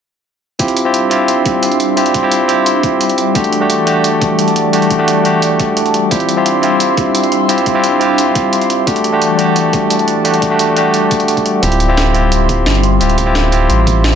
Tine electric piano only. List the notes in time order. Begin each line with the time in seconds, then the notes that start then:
0.59 C4 E4 F4 G4
0.85 C4 E4 F4 G4
1.10 C4 E4 F4 G4
1.96 C4 E4 F4 G4
2.23 C4 E4 F4 G4
2.48 C4 E4 F4 G4
3.34 A3 D4 F#4 G4
3.60 A3 D4 F#4 G4
3.86 A3 D4 F#4 G4
4.73 A3 D4 F#4 G4
4.99 A3 D4 F#4 G4
5.24 A3 D4 F#4 G4
6.11 C4 E4 F4 G4
6.37 C4 E4 F4 G4
6.62 C4 E4 F4 G4
7.48 C4 E4 F4 G4
7.74 C4 E4 F4 G4
8.00 C4 E4 F4 G4
8.86 A3 D4 F#4 G4
9.13 A3 D4 F#4 G4
9.38 A3 D4 F#4 G4
10.24 A3 D4 F#4 G4
10.50 A3 D4 F#4 G4
10.75 A3 D4 F#4 G4
11.62 C4 E4 F4 G4
11.88 C4 E4 F4 G4
12.13 C4 E4 F4 G4
13.00 C4 E4 F4 G4
13.26 C4 E4 F4 G4
13.51 C4 E4 F4 G4